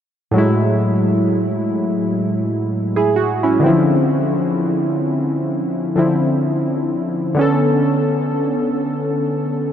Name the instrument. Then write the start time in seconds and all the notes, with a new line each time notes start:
synth keys
0.31 A2 F#3
0.36 G#3 E4
2.96 E4 G#4
3.16 F#4
3.43 C#4 E4
3.60 D3 E3
3.64 C4 E4
3.68 F3
5.96 D3 F3 C4 E4
7.34 D3 B3
7.39 C#4 A4